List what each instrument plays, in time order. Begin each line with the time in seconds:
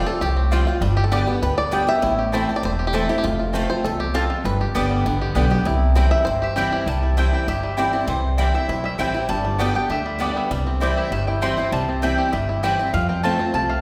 Already playing: steel-string acoustic guitar F2
0.06 steel-string acoustic guitar C4 F4, five-string banjo A4
0.21 upright bass C2, steel-string acoustic guitar A2, five-string banjo G4
0.37 five-string banjo C4
0.51 steel-string acoustic guitar F3 G3 C4 F4, mandolin A3 F4 C5 G5, five-string banjo F4
0.67 steel-string acoustic guitar C4 F4, five-string banjo F4
0.81 upright bass G1, steel-string acoustic guitar G2, five-string banjo G3
0.97 five-string banjo G4
1.04 five-string banjo A4
1.11 steel-string acoustic guitar D3 G3 B3 G4, mandolin B3 G4 D5 G5, five-string banjo G4
1.27 five-string banjo B3, steel-string acoustic guitar B3 G4
1.42 upright bass D2, steel-string acoustic guitar D3, five-string banjo B4
1.58 five-string banjo D5
1.71 steel-string acoustic guitar D3 G3 B3 G4, five-string banjo G3, mandolin B3 G4 D5 G5
1.87 steel-string acoustic guitar B3 G4, five-string banjo E5
2.02 upright bass A1, steel-string acoustic guitar A2, five-string banjo E4
2.19 five-string banjo G4
2.32 steel-string acoustic guitar E3 A3 C4 E4, mandolin C4 E4 C5 A5, five-string banjo C5
2.49 five-string banjo A3, steel-string acoustic guitar C4 E4
2.56 five-string banjo D5
2.63 upright bass E1, steel-string acoustic guitar E2, five-string banjo C5
2.79 five-string banjo G4
2.87 five-string banjo G4
2.93 steel-string acoustic guitar E3 A3 C4 E4, mandolin C4 E4 C5 A5, five-string banjo A4
3.09 steel-string acoustic guitar C4 E4, five-string banjo G4
3.18 five-string banjo G4
3.24 upright bass F1, steel-string acoustic guitar F2, five-string banjo F4
3.39 five-string banjo F4
3.53 steel-string acoustic guitar F3 A3 C4 F4, five-string banjo A3, mandolin C4 F4 C5 A5
3.70 steel-string acoustic guitar C4 F4, five-string banjo C5
3.84 upright bass C2, steel-string acoustic guitar E2, five-string banjo A4
4.00 five-string banjo G4
4.14 steel-string acoustic guitar F2, mandolin C4 F4 C5 A5, five-string banjo A4
4.30 five-string banjo F4
4.44 upright bass G1, steel-string acoustic guitar G2, five-string banjo B4
4.61 five-string banjo G4
4.74 upright bass G1, steel-string acoustic guitar D3 G3 B3 G4, mandolin B3 G4 D5 G5, five-string banjo B3
4.91 five-string banjo G3
5.05 upright bass A1, steel-string acoustic guitar D3, five-string banjo B3
5.22 five-string banjo G4
5.35 upright bass B1, steel-string acoustic guitar D3 G3 B3 G4, mandolin B3 G4 D5 G5, five-string banjo B3
5.50 steel-string acoustic guitar B3 G4, five-string banjo G4
5.65 upright bass C2, steel-string acoustic guitar C3, five-string banjo E4
5.95 steel-string acoustic guitar E3 G3 C4 E4, mandolin C4 E4 C5 G5, five-string banjo C5
6.11 five-string banjo E5
6.25 upright bass G1, steel-string acoustic guitar G2, five-string banjo C5
6.42 five-string banjo G4, mandolin E5
6.56 steel-string acoustic guitar E3 G3 C4 E4, mandolin C4 E4 C5 G5, five-string banjo G4
6.72 five-string banjo G4
6.86 upright bass C2, steel-string acoustic guitar C3, five-string banjo G3, mandolin A5
7.03 five-string banjo E4
7.17 steel-string acoustic guitar E3 G3 C4 E4, five-string banjo G3, mandolin C4 E4 C5 G5
7.33 five-string banjo E4, mandolin G5
7.47 upright bass G1, steel-string acoustic guitar G2, five-string banjo G4, mandolin E5
7.63 five-string banjo G3
7.77 steel-string acoustic guitar E3 G3 C4 E4, mandolin C4 E4 C5 D5 G5, five-string banjo E4
7.93 five-string banjo C4, steel-string acoustic guitar C4 E4
8.07 upright bass C2, steel-string acoustic guitar C3, five-string banjo E3, mandolin C5
8.38 steel-string acoustic guitar E3 G3 C4 E4, five-string banjo G3, mandolin C4 E4 C5 D5 G5
8.54 five-string banjo C4, steel-string acoustic guitar C4 E4, mandolin E5
8.68 upright bass B1, steel-string acoustic guitar G2, five-string banjo E4
8.84 five-string banjo G3, mandolin E5
8.98 upright bass A1, steel-string acoustic guitar E3 G3 C4 E4, mandolin C4 E4 C5 G5, five-string banjo C4
9.14 five-string banjo G3, steel-string acoustic guitar C4 E4
9.29 upright bass G1, steel-string acoustic guitar G2, five-string banjo G3, mandolin A5
9.45 five-string banjo D4
9.58 steel-string acoustic guitar D3 G3 B3 G4, five-string banjo G3, mandolin B3 G4 D5 G5
9.74 steel-string acoustic guitar B3 G4, five-string banjo D4, mandolin G5
9.89 upright bass D2, steel-string acoustic guitar D3, five-string banjo G4, mandolin E5
10.06 five-string banjo G3
10.19 steel-string acoustic guitar D3 G3 B3 G4, mandolin B3 G4 D5 G5, five-string banjo D4
10.36 five-string banjo B3, mandolin E5
10.51 upright bass C2, steel-string acoustic guitar C3, five-string banjo G3
10.67 five-string banjo C4
10.80 steel-string acoustic guitar E3 G3 C4 E4, mandolin C4 E4 C5 D5 G5, five-string banjo E4
10.97 five-string banjo G4, mandolin E5
11.11 upright bass G1, steel-string acoustic guitar G2, five-string banjo G3, mandolin E5
11.27 five-string banjo E4, mandolin G5
11.41 steel-string acoustic guitar E3 G3 C4 E4, mandolin C4 E4 C5 G5 C6, five-string banjo G4
11.57 five-string banjo C4, steel-string acoustic guitar C4 E4
11.72 upright bass C2, steel-string acoustic guitar C3, five-string banjo G3, mandolin A5
11.89 five-string banjo C4
12.02 steel-string acoustic guitar E3 G3 C4 E4, mandolin C4 E4 C5 G5, five-string banjo E4
12.18 five-string banjo G4
12.32 upright bass G1, steel-string acoustic guitar G2, five-string banjo G3, mandolin E5
12.49 five-string banjo E4
12.63 steel-string acoustic guitar E3 G3 C4 E4, mandolin C4 E4 C5 E5 G5, five-string banjo G4
12.79 five-string banjo C4, steel-string acoustic guitar C4 E4
12.93 upright bass F2, steel-string acoustic guitar F2, five-string banjo F3, mandolin F5
13.09 five-string banjo C4, mandolin G5
13.23 steel-string acoustic guitar F3 A3 C4 F4, five-string banjo A3, mandolin C4 F4 C5 A5
13.39 five-string banjo C4, steel-string acoustic guitar C4 F4
13.54 upright bass C2, steel-string acoustic guitar C3, five-string banjo F4, mandolin A5
13.69 five-string banjo A3, mandolin F5